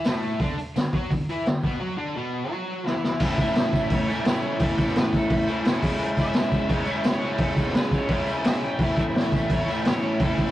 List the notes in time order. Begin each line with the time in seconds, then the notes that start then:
0.04 A2 A3, snare, open hi-hat, tambourine
0.14 snare
0.23 open hi-hat
0.40 D3 D4, kick, open hi-hat
0.58 muted overdriven electric guitar stroke, open hi-hat
0.76 D3, snare, open hi-hat, tambourine
0.93 F#3 F#4, kick, open hi-hat
1.11 D3, kick, open hi-hat
1.29 E3 E4, open hi-hat
1.46 D3, snare, open hi-hat, tambourine
1.63 B2 B3, kick, open hi-hat
1.80 F#3 F#4
1.97 D3 D4
2.16 B2 B3
2.51 F#3 F#4
2.86 E3 E4, snare
3.04 snare
3.20 A2 E3 A3 C#4, kick, crash
3.25 E4
3.37 E5, kick, tambourine, crash
3.47 tambourine
3.55 snare, tambourine, crash
3.73 kick, tambourine, crash
3.90 kick, crash
3.95 C#5
4.02 tambourine
4.07 E3 A3 C#4 E4, tambourine, crash
4.12 A2 E5
4.25 A2 E3 A3 C#4 C#5, snare, tambourine, crash
4.29 E4
4.37 tambourine
4.42 crash
4.58 A2 E3 A3, kick, crash
4.63 C#4 E4 A4
4.78 kick, tambourine, crash
4.88 snare, tambourine
4.95 B4, snare, tambourine, crash
5.07 tambourine
5.13 A4, kick, tambourine, crash
5.24 tambourine
5.30 kick, crash
5.42 tambourine
5.47 E3 A3 C#4 E4, tambourine, crash
5.52 A2
5.64 A2 E3 A3, snare, tambourine, crash
5.68 C#4 E4
5.76 tambourine
5.81 C#3 G#3 C#4, kick, crash
5.86 E4
6.00 crash
6.17 kick, tambourine, crash
6.21 E5
6.27 tambourine
6.33 snare, tambourine, crash
6.52 kick, tambourine, crash
6.60 tambourine
6.68 C#3 G#3 C#4, kick, crash
6.73 E4 C#5
6.77 tambourine
6.85 G#3 C#4 E4, tambourine, crash
6.90 C#3 E5
7.04 snare, tambourine, crash
7.08 C#5
7.14 tambourine
7.19 C#3 G#3 C#4, crash
7.24 E4
7.38 kick, tambourine, crash
7.43 A4
7.49 tambourine
7.56 kick, tambourine, crash
7.67 snare
7.74 B4, snare, tambourine, crash
7.85 tambourine
7.91 C#5, kick, tambourine, crash
8.03 tambourine
8.08 C#3 G#3 C#4, kick, tambourine, crash
8.13 E4
8.20 tambourine
8.26 G#3 C#4 E4, tambourine, crash
8.31 C#3
8.37 tambourine
8.44 E5, snare, tambourine, crash
8.56 tambourine
8.61 G5, tambourine, crash
8.73 tambourine
8.79 A2 E3 A3, kick, crash
8.83 C#4 E4
8.96 kick, tambourine, crash
9.01 E5
9.07 snare, tambourine
9.15 snare, tambourine, crash
9.32 kick, tambourine, crash
9.44 tambourine
9.50 C#5, kick, crash
9.62 tambourine
9.66 A3 C#4 E4, crash
9.70 A2 E3 E5, tambourine
9.84 A2 E3 A3 C#4, snare, crash
9.88 E4 C#5, tambourine
9.97 tambourine
10.03 crash
10.19 A2 E3 A3 A4, kick, crash
10.24 C#4 E4
10.37 kick, crash
10.48 snare, tambourine